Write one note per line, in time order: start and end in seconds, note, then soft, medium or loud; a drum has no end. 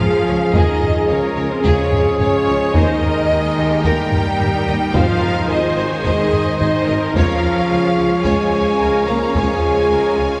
0.00 0.10 C#2 medium
0.00 0.54 F3 loud
0.00 2.70 F3 medium
0.00 3.81 G#3 medium
0.00 2.70 C#4 loud
0.00 0.55 F4 loud
0.00 2.70 F4 loud
0.00 0.25 G#4 medium
0.00 2.70 G#4 medium
0.00 2.71 G#4 medium
0.00 0.52 F5 medium
0.00 2.71 F5 loud
0.00 taiko low medium
0.00 impact medium
0.26 0.37 C#2 soft
0.26 0.35 C#2 medium
0.26 0.53 G#4 medium
0.26 0.35 C#5 medium
0.53 0.65 C#2 medium
0.53 0.62 C#2 medium
0.53 1.10 D#3 medium
0.53 1.09 D#4 medium
0.53 0.80 G#4 medium
0.53 0.81 A#4 medium
0.53 1.09 D#5 medium
0.53 taiko loud
0.82 1.09 G#4 medium
0.82 taiko low soft
1.09 1.20 C#2 medium
1.09 1.18 C#2 medium
1.09 1.51 C#3 medium
1.09 1.50 C#4 medium
1.09 1.64 A#4 medium
1.09 1.51 C#5 medium
1.09 1.18 F5 soft
1.36 1.47 C#2 soft
1.36 1.45 C#2 medium
1.36 1.44 C#5 medium
1.51 1.64 C3 medium
1.51 1.65 C4 medium
1.51 1.64 C5 medium
1.64 1.75 C#2 medium
1.64 1.73 C#2 medium
1.64 2.19 C#3 medium
1.64 2.18 C#4 medium
1.64 1.90 G#4 medium
1.64 2.18 G#4 medium
1.64 2.18 C#5 medium
1.64 taiko medium
1.92 taiko low soft
2.19 2.30 C#2 medium
2.19 2.28 C#2 medium
2.19 2.73 C#3 medium
2.19 2.73 C#4 medium
2.19 2.73 C#5 medium
2.19 2.75 C#5 medium
2.19 2.28 F5 medium
2.19 taiko low medium
2.46 2.57 C#2 medium
2.46 2.56 C#2 medium
2.46 2.56 C#5 medium
2.74 2.85 D#2 medium
2.74 2.83 D#2 medium
2.74 6.99 D#3 medium
2.74 3.83 D#3 medium
2.74 4.95 A#3 medium
2.74 3.84 D#4 loud
2.74 7.15 D#4 medium
2.74 4.63 A#4 medium
2.74 3.00 A#4 medium
2.74 4.95 A#4 medium
2.74 3.02 C5 medium
2.74 3.84 D#5 loud
2.74 4.95 G5 medium
2.74 taiko loud
3.02 3.30 A#4 medium
3.02 taiko low soft
3.29 3.40 D#2 medium
3.29 3.38 D#2 medium
3.29 3.57 G#4 medium
3.29 3.39 G5 medium
3.57 3.68 D#2 medium
3.57 3.65 D#2 medium
3.57 3.84 G4 medium
3.57 3.66 D#5 medium
3.84 3.92 D#2 medium
3.84 3.95 D#2 medium
3.84 4.94 G3 loud
3.84 4.95 G3 medium
3.84 4.94 G4 loud
3.84 4.10 A#4 medium
3.84 4.12 A#4 medium
3.84 4.92 G5 loud
3.84 taiko medium
4.12 4.94 A#4 medium
4.12 taiko low soft
4.40 4.50 D#2 medium
4.40 4.48 D#2 medium
4.40 4.48 G5 medium
4.40 taiko low medium
4.67 4.75 D#2 medium
4.67 4.78 D#2 medium
4.67 4.75 D#5 medium
4.93 5.05 G#1 medium
4.93 5.02 G#1 medium
4.93 5.73 G#2 medium
4.93 5.50 F3 loud
4.93 6.99 G#3 medium
4.93 7.15 G#3 loud
4.93 5.48 F4 loud
4.93 5.20 C5 medium
4.93 7.17 C5 medium
4.93 5.22 C5 medium
4.93 7.15 C5 medium
4.93 5.50 F5 loud
4.93 7.15 G#5 medium
4.93 taiko loud
5.23 5.50 A#4 medium
5.23 taiko low soft
5.48 5.58 G#1 medium
5.48 5.61 G#1 medium
5.48 5.91 D#3 medium
5.48 5.77 D#4 medium
5.48 6.04 C5 medium
5.48 5.91 D#5 medium
5.48 5.56 G#5 medium
5.77 5.85 G#1 medium
5.77 5.89 G#1 medium
5.77 5.86 D#5 medium
5.90 6.05 C#3 medium
5.90 6.04 C#4 medium
5.90 6.04 C#5 medium
6.03 6.13 G#1 medium
6.03 6.16 G#1 medium
6.03 6.59 D#3 medium
6.03 6.58 D#4 medium
6.03 6.58 G#4 medium
6.03 6.30 C5 medium
6.03 6.59 D#5 loud
6.03 taiko medium
6.33 taiko low soft
6.58 6.68 G#1 medium
6.58 6.71 G#1 medium
6.58 7.14 D#3 medium
6.58 7.13 D#4 loud
6.58 6.87 C5 medium
6.58 7.14 D#5 medium
6.58 6.68 G#5 medium
6.58 taiko low medium
6.86 6.98 G#1 medium
6.86 6.96 G#1 medium
6.86 7.69 A#4 medium
6.86 6.96 D#5 medium
7.15 7.26 C#2 medium
7.15 7.24 C#2 medium
7.15 10.40 C#3 medium
7.15 8.25 F3 medium
7.15 10.40 F3 medium
7.15 10.40 C#4 medium
7.15 8.25 F4 loud
7.15 10.40 C#5 medium
7.15 7.41 C#5 medium
7.15 10.40 F5 medium
7.15 8.23 F5 loud
7.15 taiko loud
7.69 7.80 C#2 medium
7.69 7.78 C#2 medium
7.69 8.25 G#4 medium
7.69 7.79 G#5 medium
7.97 8.08 C#2 medium
7.97 8.06 C#2 medium
7.97 8.07 F5 medium
8.24 8.33 C#2 medium
8.24 8.36 C#2 medium
8.24 9.05 G#3 medium
8.24 8.52 F4 medium
8.24 9.05 G#4 loud
8.24 8.50 C#5 medium
8.24 9.08 G#5 medium
8.24 taiko medium
8.53 8.80 C#5 medium
8.80 8.91 C#2 medium
8.80 8.88 C#2 medium
8.80 9.07 A#4 medium
8.80 8.88 G#5 medium
9.07 9.18 C#2 medium
9.07 9.16 C#2 medium
9.07 9.35 A#3 medium
9.07 9.35 G#4 medium
9.07 9.34 A#4 loud
9.07 9.16 F5 medium
9.07 9.35 A#5 medium
9.35 9.43 C#2 medium
9.35 9.46 C#2 medium
9.35 10.40 G#3 medium
9.35 9.90 F4 medium
9.35 10.40 G#4 loud
9.35 9.60 C#5 medium
9.35 10.40 G#5 medium
9.35 taiko medium
9.90 10.01 C#2 medium
9.90 9.98 C#2 medium
9.90 10.17 A#4 medium
9.90 9.98 G#5 soft
10.17 10.28 C#2 soft
10.17 10.27 C#2 soft
10.17 10.40 F4 medium
10.17 10.25 F5 medium